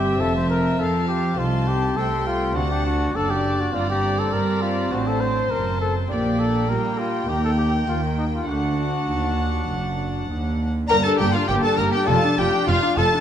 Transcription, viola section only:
Already playing: C4
1.39 C4
1.98 A3
2.56 D4
3.16 D4
3.75 C4
6.10 A#3
6.69 G3
7.28 A#3
7.88 A#3
8.49 D4
10.91 A#3
11.05 D4
11.20 A#3
11.36 D4
11.50 A#3
11.66 D4
11.80 A#3
11.94 D4
12.10 F4
12.24 D4
12.39 F4
12.54 D4
12.69 F4
12.83 D4
12.98 F4
13.13 D4

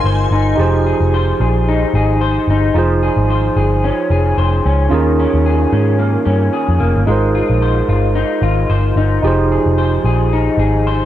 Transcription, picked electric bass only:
0.04 G1
0.31 G1
0.58 F1
1.00 F1
1.40 A#1
1.94 G#1
2.48 G1
2.75 F1
3.17 G#1
3.56 G1
4.10 F1
4.38 F1
4.66 C#2
4.92 D#2
5.34 D#2
5.73 G#2
6.27 G2
6.69 F2
6.81 F1
6.96 G1
7.08 G#1
7.50 A#1
7.89 G1
8.42 G#1
8.69 G1
8.96 G1
9.23 F1
9.66 F1
10.04 A#1
10.58 G#1

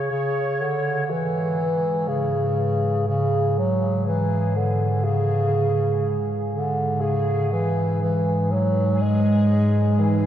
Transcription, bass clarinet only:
0.11 C#3
0.62 D3
1.10 E3
2.08 C#3
3.08 C#3
3.58 F#3
4.06 E3
4.55 D3
5.04 C#3
6.54 D3
7.01 C#3
7.52 E3
8.02 E3
8.52 F#3
9.02 G#3
10.00 E3

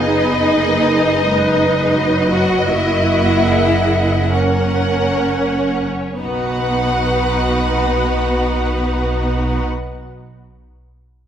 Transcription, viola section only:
Already playing: B3 G#4
0.60 A#3
1.27 G#3 B4
1.96 F#3
2.69 A#3 F#4
3.47 G#4
4.31 A#3 A#4
6.20 D#4 F#4

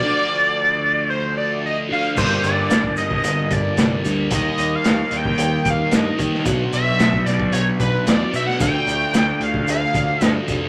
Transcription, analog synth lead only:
Already playing: D5 A6
1.10 C5 G6
1.37 D5 A6
1.66 D#5 A#6
1.92 F5 C7
2.18 C5 G6
2.44 D5 A6
2.98 D#5 A#6
3.52 D5 A6
4.34 D#5 A#6
4.75 F5 C7
5.17 G5 D7
5.70 F5 C7
5.96 D#5 A#6
6.73 E5 B6
7.26 D5 A6
7.53 C#5 G#6
7.80 B4 F#6
8.08 D5 A6
8.36 E5 B6
8.46 F#5 C#7
8.61 G5 D7
9.43 F5 C7
9.70 F5 C7
10.25 D#5 A#6

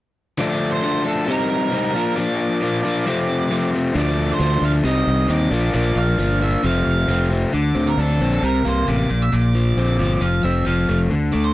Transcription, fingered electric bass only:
3.95 D2
4.40 D2
4.61 D2
4.84 C2
5.07 C2
5.29 D#2
5.51 A#1
5.74 A#1
5.96 A#1
6.19 G1
6.64 F1
6.87 F1
7.08 F1
7.54 D2
7.75 D2
7.98 D2
8.20 A#1
8.43 C2
8.66 C2
8.88 A1
9.11 A#1
9.33 A#1
9.77 A#1
9.99 G1
10.22 F1
10.44 F1
10.67 F1
10.89 F1
11.12 D2
11.35 D2

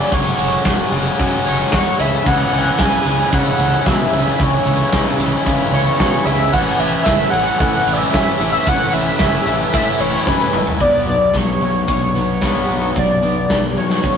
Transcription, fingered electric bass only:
0.13 F#1
0.39 F#1
0.66 E1
0.92 F#1
1.20 F#2
1.46 F#1
1.72 E2
1.99 C#2
2.26 C#2
2.53 C#2
2.80 B1
3.05 C#2
3.33 C#3
3.59 C#2
3.87 B2
4.12 C#2
4.40 C#2
4.66 C#2
4.93 B1
5.18 C#2
5.46 C#3
5.71 C#2
6.00 B2
6.25 C#2
6.54 A1
6.79 A1
7.07 F#1
7.33 A1
7.61 A2
7.87 A1
8.13 F#2
8.39 A1
8.67 A1
8.94 A1
9.20 F#1
9.47 A1
9.73 A2
10.00 A1
10.27 F#2
10.53 A1
10.80 B1
11.06 B1
11.34 B1
11.61 B1
11.88 B1
12.16 B1
12.42 B1
12.69 B1
12.96 B1
13.24 B1
13.50 B1
13.78 B2
14.04 A1

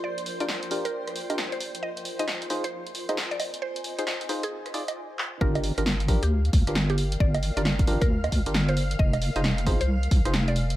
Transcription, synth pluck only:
0.04 D5
0.40 D5
0.85 A#4
1.52 C5
1.83 D#5
2.19 D#5
2.64 C5
3.31 D5
3.62 C5
3.98 C5
4.43 G#4
5.41 A#4
5.78 A#4
6.23 G4
6.90 G4
7.20 D5
7.57 D5
8.01 A#4
8.69 C5
8.99 D#5
9.36 D#5
9.81 C5
10.48 D5

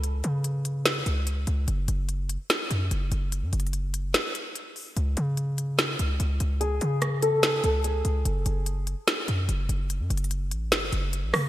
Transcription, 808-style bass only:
Already playing: C#2
0.24 C#3
1.06 C#2
1.47 C#2
1.68 F#1
1.88 F#1
2.70 F#2
2.91 F#1
3.12 F#1
3.43 F#2
3.53 F#1
4.97 C#2
5.17 C#3
5.99 C#2
6.20 C#2
6.40 C#2
6.81 C#3
7.64 C#2
8.05 C#2
8.25 F#1
8.46 F#1
9.28 F#2
9.49 F#1
9.69 F#1
10.00 F#2
10.10 F#1
10.51 A1
10.72 F#1
10.92 F#1
11.23 A1
11.33 C#3

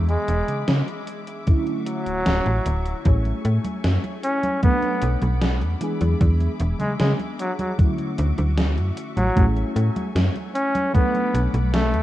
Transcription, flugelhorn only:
0.10 G#3
1.87 F#3
4.24 C#4
4.63 B3
6.80 G#3
7.00 G#3
7.40 F#3
7.60 F#3
9.17 F#3
10.55 C#4
10.94 B3
11.74 A3

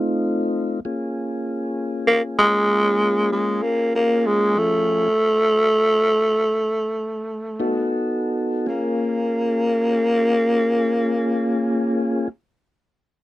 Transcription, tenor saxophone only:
2.07 A#3
2.39 G#3
3.33 G#3
3.63 A#3
3.95 A#3
4.26 G#3
4.59 A3
8.70 A#3

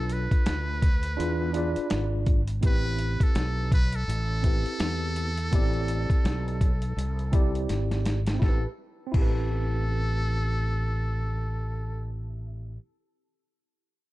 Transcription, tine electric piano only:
Already playing: D4 F4 A4 B4
1.17 D4 F4 G#4 B4
1.53 D4 F4 G#4 D5
2.61 B3 E4 G4 B4
2.68 C4
4.43 C4 E4 G4 B4
5.51 B3 E4 G4 D5
5.58 C4
7.32 C4 E4 G4 D5
8.34 C4
8.39 E4
8.44 G4
8.49 B4
9.07 C4
9.12 E4
9.17 G4
9.22 B4

